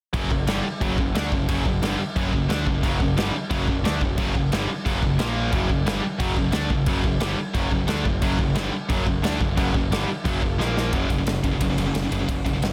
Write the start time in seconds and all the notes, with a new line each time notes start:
0.13 F#1 F#2 C#3 F#3, kick, crash
0.30 F#1 F#2 C#3, kick
0.47 G1 G2 D3 G3, snare, crash
0.63 muted distorted electric guitar stroke, muted picked electric bass stroke, muted overdriven electric guitar stroke
0.80 F#1 F#2 C#3 F#3, kick, crash
0.98 F#1 F#2 C#3, kick
1.15 D2 D3 A3 D4, snare, crash
1.31 F#1 F#2 C#3, kick
1.48 F#1 F#2 C#3 F#3, kick, crash
1.65 F#1 F#2 C#3, kick
1.82 G1 G2 D3 G3, snare, crash
1.99 muted picked electric bass stroke, muted overdriven electric guitar stroke, muted distorted electric guitar stroke
2.16 F#1 F#2 C#3 F#3, kick, crash
2.31 F#1 F#2 C#3, kick
2.49 D2 D3 A3 D4, snare, crash
2.65 F#1 F#2 C#3, kick
2.82 F#1 F#2 C#3 F#3, kick, crash
3.00 F#1 F#2 C#3, kick
3.16 G1 G2 D3 G3, snare, crash
3.33 muted picked electric bass stroke, muted distorted electric guitar stroke, muted overdriven electric guitar stroke
3.50 F#1 F#2 C#3 F#3, kick, crash
3.67 F#1 F#2 C#3, kick
3.84 D2 D3 A3 D4, snare, crash
4.01 F#1 F#2 C#3, kick
4.17 F#1 F#2 C#3 F#3, kick, crash
4.34 F#1 F#2 C#3, kick
4.52 G1 G2 D3 G3, snare, crash
4.68 muted distorted electric guitar stroke, muted picked electric bass stroke, muted overdriven electric guitar stroke
4.86 F#1 F#2 C#3 F#3, kick, crash
5.02 F#1 F#2 C#3, kick
5.18 A#1 A#2 F3 A#3, snare, crash
5.51 F#1 F#2 C#3 F#3, kick, crash
5.68 F#1 F#2 C#3, kick
5.85 G1 G2 D3 G3, snare, crash
6.01 muted distorted electric guitar stroke, muted picked electric bass stroke, muted overdriven electric guitar stroke
6.19 F#1 F#2 C#3 F#3, kick, crash
6.36 F#1 F#2 C#3, kick
6.52 D2 D3 A3 D4, snare, crash
6.70 F#1 F#2 C#3, kick
6.86 F#1 F#2 C#3 F#3, kick, crash
7.04 F#1 F#2 C#3, kick
7.20 G1 G2 D3 G3, snare, crash
7.37 muted overdriven electric guitar stroke, muted picked electric bass stroke, muted distorted electric guitar stroke
7.54 F#1 F#2 C#3 F#3, kick, crash
7.71 F#1 F#2 C#3, kick
7.88 D2 D3 A3 D4, snare, crash
8.05 F#1 F#2 C#3, kick
8.22 F#1 F#2 C#3 F#3, kick, crash
8.38 F#1 F#2 C#3, kick
8.55 G1 G2 D3 G3, snare, crash
8.72 muted distorted electric guitar stroke, muted picked electric bass stroke, muted overdriven electric guitar stroke
8.88 F#1 F#2 C#3 F#3, kick, crash
9.06 F#1 F#2 C#3, kick
9.22 D2 D3 A3 D4, snare, crash
9.39 F#1 F#2 C#3, kick
9.56 F#1 F#2 C#3 F#3, kick, crash
9.74 F#1 F#2 C#3, kick
9.90 G1 G2 D3 G3, snare, crash
10.07 muted picked electric bass stroke, muted distorted electric guitar stroke, muted overdriven electric guitar stroke
10.24 F#1 F#2 C#3 F#3, kick, crash
10.42 F#1 F#2 C#3, kick
10.58 A#1 A#2 F3 A#3, snare
10.77 snare
10.92 F#1 F#2 C#3 F#3, kick, ride
11.09 F#1 F#2 C#3, kick, ride
11.18 F#2 C#3
11.27 F#1 F#2 C#3, snare, ride
11.43 F#1 F#2 C#3, kick, ride
11.53 F#2 C#3
11.60 F#1 F#2 C#3, kick, ride
11.70 F#2 C#3
11.77 F#1 F#2 C#3, ride
11.87 F#2 C#3
11.94 F#1 F#2 C#3, snare, ride
12.04 F#2 C#3
12.11 F#1 F#2 C#3, ride
12.20 F#2 C#3
12.28 F#1 F#2 C#3, kick, ride
12.45 F#1 F#2 C#3, kick, ride
12.55 F#2 C#3
12.62 F#1 F#2 C#3, snare, ride